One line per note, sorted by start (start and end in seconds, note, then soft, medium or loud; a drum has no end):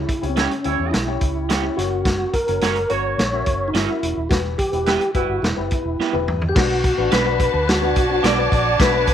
0.00 0.61 C#3 medium
0.00 0.26 E4 medium
0.09 kick medium
0.09 closed hi-hat medium
0.22 0.46 C#2 medium
0.22 0.50 C#4 medium
0.22 0.50 E4 medium
0.22 0.50 G4 medium
0.22 0.50 C#5 medium
0.22 closed hi-hat soft
0.29 0.36 C4 medium
0.36 0.46 G3 medium
0.36 0.50 C#4 medium
0.36 0.95 C#4 medium
0.36 0.45 E4 medium
0.36 0.50 E4 medium
0.36 0.51 G4 medium
0.36 0.45 C#5 medium
0.36 0.51 C#5 medium
0.36 snare loud
0.36 closed hi-hat medium
0.51 closed hi-hat soft
0.64 0.77 D2 medium
0.64 1.05 G3 medium
0.64 0.92 C#4 medium
0.64 0.92 E4 medium
0.64 1.05 E4 medium
0.64 0.93 G4 medium
0.64 1.05 C#5 medium
0.64 0.93 C#5 medium
0.64 closed hi-hat medium
0.80 0.91 E2 medium
0.91 1.17 B1 medium
0.91 1.79 E4 medium
0.91 snare loud
0.91 closed hi-hat medium
1.07 1.44 C#4 medium
1.07 1.44 E4 medium
1.07 1.44 G4 medium
1.07 1.44 C#5 medium
1.21 1.68 C#2 medium
1.21 kick medium
1.21 closed hi-hat medium
1.49 1.63 C#4 medium
1.49 1.63 E4 medium
1.49 1.63 G4 medium
1.49 1.64 C#5 medium
1.49 snare loud
1.49 closed hi-hat medium
1.62 1.74 C#4 medium
1.62 1.77 E4 medium
1.62 1.75 G4 medium
1.62 1.75 C#5 medium
1.76 2.24 F#1 loud
1.76 2.33 C#4 medium
1.76 2.33 F#4 medium
1.76 2.35 F#4 medium
1.76 1.83 G4 soft
1.76 2.34 C#5 medium
1.76 snare soft
1.76 closed hi-hat medium
1.83 2.37 A#4 medium
2.05 kick loud
2.05 snare medium
2.05 closed hi-hat medium
2.33 2.92 A#4 medium
2.33 kick medium
2.33 closed hi-hat medium
2.47 2.60 F#1 medium
2.47 2.75 C#4 medium
2.47 2.75 F#4 medium
2.47 2.75 A#4 medium
2.47 2.76 C#5 medium
2.47 closed hi-hat soft
2.61 2.86 F#1 medium
2.61 2.71 A#3 medium
2.61 2.76 C#4 medium
2.61 2.71 F#4 medium
2.61 2.76 F#4 medium
2.61 2.76 A#4 medium
2.61 2.70 C#5 medium
2.61 2.76 C#5 loud
2.61 snare loud
2.61 closed hi-hat medium
2.76 closed hi-hat soft
2.89 3.14 G1 medium
2.89 3.30 A#3 medium
2.89 3.18 C#4 medium
2.89 3.30 F#4 medium
2.89 3.18 F#4 medium
2.89 3.18 A#4 medium
2.89 3.30 C#5 loud
2.89 3.70 C#5 loud
2.89 3.18 C#5 medium
2.89 closed hi-hat medium
3.18 3.41 A#1 medium
3.18 snare loud
3.18 closed hi-hat medium
3.32 3.69 C#4 medium
3.32 3.69 F#4 medium
3.32 3.70 A#4 medium
3.32 3.70 E5 medium
3.46 3.70 F#1 medium
3.46 kick medium
3.46 closed hi-hat medium
3.68 3.75 D#4 medium
3.74 3.86 G1 medium
3.74 3.88 C#4 medium
3.74 4.33 E4 medium
3.74 3.88 F#4 medium
3.74 3.89 A#4 medium
3.74 3.89 C#5 medium
3.74 snare medium
3.74 closed hi-hat medium
3.88 4.16 C#4 medium
3.88 4.16 F#4 medium
3.88 4.17 A#4 medium
3.88 4.17 E5 medium
4.03 4.14 E1 medium
4.03 closed hi-hat medium
4.17 4.29 D#1 medium
4.29 4.54 E1 loud
4.29 5.12 E3 medium
4.29 4.58 B3 medium
4.29 4.58 E4 medium
4.29 4.42 F#4 medium
4.29 4.59 G4 medium
4.29 4.59 B4 medium
4.29 kick loud
4.29 snare loud
4.29 closed hi-hat medium
4.58 5.11 G4 loud
4.58 kick medium
4.58 closed hi-hat medium
4.72 4.96 E1 medium
4.72 5.00 B3 medium
4.72 5.01 E4 medium
4.72 5.01 G4 medium
4.72 5.01 B4 medium
4.72 closed hi-hat soft
4.86 4.96 G3 medium
4.86 5.01 B3 medium
4.86 4.95 E4 medium
4.86 5.01 E4 medium
4.86 5.01 G4 medium
4.86 4.95 B4 loud
4.86 5.02 B4 medium
4.86 snare loud
4.86 closed hi-hat medium
5.01 closed hi-hat soft
5.14 5.27 F#1 medium
5.14 5.55 G3 medium
5.14 5.43 B3 medium
5.14 5.55 E4 medium
5.14 5.43 E4 medium
5.14 5.44 F#4 medium
5.14 5.43 G4 medium
5.14 5.55 B4 medium
5.14 5.43 B4 medium
5.14 kick medium
5.14 closed hi-hat medium
5.29 5.41 G1 medium
5.42 5.55 E1 loud
5.42 6.23 E4 medium
5.42 snare loud
5.42 closed hi-hat medium
5.56 5.69 F#1 medium
5.56 5.94 B3 medium
5.56 5.94 E4 medium
5.56 5.94 G4 medium
5.56 5.94 B4 medium
5.71 kick medium
5.71 closed hi-hat medium
5.85 5.97 E1 medium
5.99 6.13 B3 medium
5.99 6.14 E4 medium
5.99 6.14 G4 medium
5.99 6.14 B4 medium
5.99 muted fingered electric bass stroke soft
5.99 snare medium
6.13 6.25 E1 medium
6.13 6.41 B3 medium
6.13 6.41 E4 medium
6.13 6.41 G4 medium
6.13 6.42 B4 medium
6.13 high tom medium
6.28 6.51 E2 loud
6.28 mid tom medium
6.41 floor tom medium
6.49 6.56 G4 medium
6.49 6.55 G6 medium
6.55 6.90 B1 loud
6.55 7.36 B2 medium
6.55 6.83 B3 medium
6.55 6.83 D4 medium
6.55 9.14 D4 medium
6.55 7.13 F#4 medium
6.55 9.14 F#4 medium
6.55 6.84 F#4 medium
6.55 6.84 B4 medium
6.55 6.84 D5 medium
6.55 9.14 A5 medium
6.55 7.08 F#6 medium
6.55 kick loud
6.55 snare loud
6.55 crash loud
6.84 kick medium
6.84 closed hi-hat medium
6.98 7.10 A1 medium
6.98 7.16 B3 medium
6.98 7.16 D4 medium
6.98 7.16 F#4 medium
6.98 7.16 B4 medium
6.98 7.17 D5 medium
7.11 7.47 B1 medium
7.11 7.25 B3 medium
7.11 7.25 D4 medium
7.11 7.26 F#4 medium
7.11 7.26 B4 medium
7.11 7.70 B4 medium
7.11 7.64 B6 medium
7.11 snare loud
7.11 closed hi-hat medium
7.25 7.62 B3 medium
7.25 7.62 D4 medium
7.25 7.63 F#4 medium
7.25 7.63 B4 medium
7.25 7.63 D5 medium
7.40 kick medium
7.40 closed hi-hat medium
7.54 7.96 D2 loud
7.67 9.14 F#3 medium
7.67 9.14 D4 medium
7.67 8.26 F#4 medium
7.67 9.14 C#5 medium
7.67 8.20 F#6 medium
7.67 snare loud
7.67 closed hi-hat medium
7.81 8.00 B3 medium
7.81 8.00 D4 medium
7.81 8.00 F#4 medium
7.81 8.01 B4 medium
7.81 8.01 D5 medium
7.96 8.19 B1 medium
7.96 kick medium
7.96 closed hi-hat medium
8.10 8.28 B3 medium
8.10 8.28 D4 medium
8.10 8.28 F#4 medium
8.10 8.29 B4 medium
8.10 8.29 D5 medium
8.23 8.47 B1 loud
8.23 8.37 B3 medium
8.23 8.37 D4 medium
8.23 8.38 F#4 medium
8.23 8.38 B4 medium
8.23 8.81 D5 loud
8.23 8.76 D7 medium
8.23 snare loud
8.23 closed hi-hat loud
8.38 8.65 B3 medium
8.38 8.65 D4 medium
8.38 8.65 F#4 medium
8.38 8.65 B4 medium
8.38 8.66 D5 medium
8.52 8.75 A#1 loud
8.52 kick medium
8.52 closed hi-hat medium
8.80 9.14 B1 loud
8.80 9.14 B2 medium
8.80 9.07 B3 medium
8.80 9.07 D4 medium
8.80 9.08 F#4 medium
8.80 9.08 B4 medium
8.80 9.14 B4 loud
8.80 9.08 E5 medium
8.80 9.14 B6 medium
8.80 kick loud
8.80 snare loud
8.80 closed hi-hat medium
9.07 kick medium
9.07 closed hi-hat medium